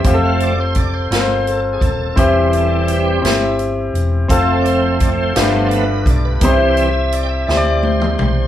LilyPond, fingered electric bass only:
\new Staff \with { instrumentName = "Fingered electric bass" } { \clef bass \time 6/8 \key f \major \tempo 4. = 57 f,,4. g,,4 ees,,8 | e,,4. g,,4 e,,8 | f,,4. g,,4 b,,8 | c,4. d,4 b,,8 | }